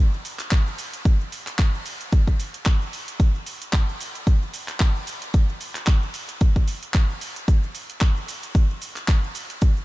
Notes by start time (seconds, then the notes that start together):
0.14 shaker
0.25 open hi-hat, shaker
0.39 clap, closed hi-hat, shaker
0.51 kick, clap, closed hi-hat, shaker
0.67 shaker
0.78 open hi-hat, shaker
0.94 closed hi-hat, shaker
1.05 kick, closed hi-hat, shaker
1.21 shaker
1.32 open hi-hat, shaker
1.47 clap, closed hi-hat, shaker
1.59 kick, clap, closed hi-hat, shaker
1.75 shaker
1.86 open hi-hat, shaker
2.01 closed hi-hat, shaker
2.12 kick, closed hi-hat, shaker
2.28 kick, shaker
2.40 open hi-hat, shaker
2.54 closed hi-hat, shaker
2.66 kick, clap, closed hi-hat, shaker
2.82 shaker
2.93 open hi-hat, shaker
3.08 closed hi-hat, shaker
3.20 kick, closed hi-hat, shaker
3.35 shaker
3.46 open hi-hat, shaker
3.62 closed hi-hat, shaker
3.73 kick, clap, closed hi-hat, shaker
3.89 shaker
4.01 open hi-hat, shaker
4.15 closed hi-hat, shaker
4.27 kick, closed hi-hat, shaker
4.42 shaker
4.54 open hi-hat, shaker
4.68 clap, closed hi-hat, shaker
4.80 kick, clap, closed hi-hat, shaker
4.96 shaker
5.07 open hi-hat, shaker
5.22 closed hi-hat, shaker
5.34 kick, closed hi-hat, shaker
5.49 shaker
5.61 open hi-hat, shaker
5.75 clap, closed hi-hat, shaker
5.87 kick, clap, closed hi-hat, shaker
6.03 shaker
6.14 open hi-hat, shaker
6.29 closed hi-hat, shaker
6.41 kick, closed hi-hat, shaker
6.56 kick, shaker
6.68 open hi-hat, shaker
6.83 closed hi-hat, shaker
6.94 kick, clap, closed hi-hat, shaker
7.10 shaker
7.21 open hi-hat, shaker
7.36 closed hi-hat, shaker
7.48 kick, closed hi-hat, shaker
7.63 shaker
7.75 open hi-hat, shaker
7.90 closed hi-hat, shaker
8.01 kick, clap, closed hi-hat, shaker
8.17 shaker
8.28 open hi-hat, shaker
8.43 closed hi-hat, shaker
8.55 kick, closed hi-hat, shaker
8.70 shaker
8.82 open hi-hat, shaker
8.96 clap, closed hi-hat, shaker
9.08 kick, clap, closed hi-hat, shaker
9.24 shaker
9.35 open hi-hat, shaker
9.50 closed hi-hat, shaker
9.62 kick, closed hi-hat, shaker
9.77 shaker